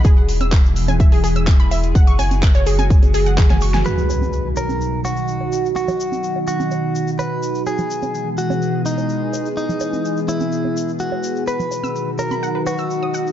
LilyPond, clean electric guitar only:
\new Staff \with { instrumentName = "Clean electric guitar" } { \time 4/4 \key b \major \tempo 4 = 126 r1 | r1 | b'4. ais'4 fis'4. | fis'4. fis'4. b'4 |
gis'4. fis'4 dis'4. | dis'4. e'4. fis'4 | b'4. ais'4 fis'4. | }